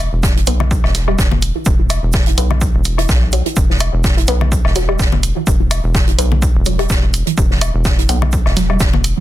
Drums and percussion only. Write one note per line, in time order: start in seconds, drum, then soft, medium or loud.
0.23 kick loud
0.23 snare loud
0.23 shaker medium
0.37 closed hi-hat soft
0.47 closed hi-hat medium
0.47 shaker medium
0.60 low conga medium
0.60 low woodblock medium
0.71 kick loud
0.71 shaker medium
0.84 snare soft
0.84 low woodblock medium
0.94 snare medium
0.94 closed hi-hat medium
0.94 shaker medium
1.08 low woodblock medium
1.19 kick loud
1.19 snare loud
1.19 shaker medium
1.32 low conga medium
1.42 closed hi-hat medium
1.42 shaker medium
1.66 kick loud
1.66 shaker medium
1.90 closed hi-hat medium
1.90 low woodblock medium
1.90 shaker medium
2.13 kick loud
2.13 snare loud
2.13 shaker medium
2.26 closed hi-hat soft
2.38 closed hi-hat medium
2.38 shaker medium
2.51 low conga medium
2.51 low woodblock soft
2.61 kick loud
2.61 shaker medium
2.84 closed hi-hat medium
2.84 shaker medium
2.98 closed hi-hat soft
2.98 low woodblock medium
3.09 kick loud
3.09 snare loud
3.09 shaker medium
3.32 closed hi-hat medium
3.32 shaker medium
3.46 closed hi-hat soft
3.56 kick loud
3.56 shaker medium
3.70 snare medium
3.80 closed hi-hat medium
3.80 low woodblock medium
3.80 shaker medium
4.04 kick loud
4.04 snare loud
4.04 shaker medium
4.18 closed hi-hat soft
4.27 closed hi-hat medium
4.27 shaker medium
4.41 low conga medium
4.41 low woodblock soft
4.52 kick loud
4.52 shaker medium
4.65 snare soft
4.65 low woodblock medium
4.75 snare medium
4.75 closed hi-hat medium
4.75 shaker medium
4.89 low woodblock medium
4.99 kick loud
4.99 snare loud
4.99 shaker medium
5.12 low conga medium
5.23 closed hi-hat medium
5.23 shaker medium
5.47 kick loud
5.47 shaker medium
5.71 closed hi-hat medium
5.71 low woodblock medium
5.71 shaker medium
5.95 kick loud
5.95 snare loud
5.95 shaker medium
6.07 closed hi-hat soft
6.19 closed hi-hat medium
6.19 shaker medium
6.32 low conga medium
6.42 kick loud
6.42 shaker medium
6.66 closed hi-hat medium
6.66 shaker medium
6.79 closed hi-hat soft
6.79 low woodblock medium
6.90 kick loud
6.90 snare loud
6.90 shaker medium
7.14 closed hi-hat medium
7.14 shaker medium
7.27 closed hi-hat soft
7.38 kick loud
7.38 shaker medium
7.50 snare soft
7.61 closed hi-hat medium
7.61 low woodblock medium
7.61 shaker medium
7.85 kick loud
7.85 snare loud
7.85 shaker medium
7.99 closed hi-hat soft
8.09 closed hi-hat medium
8.09 shaker medium
8.22 low conga medium
8.22 low woodblock soft
8.32 kick loud
8.32 shaker medium
8.45 snare soft
8.45 low woodblock medium
8.56 snare soft
8.56 closed hi-hat medium
8.56 shaker medium
8.70 low woodblock medium
8.80 kick loud
8.80 snare loud
8.80 shaker medium
8.94 low conga medium
9.04 closed hi-hat medium
9.04 shaker medium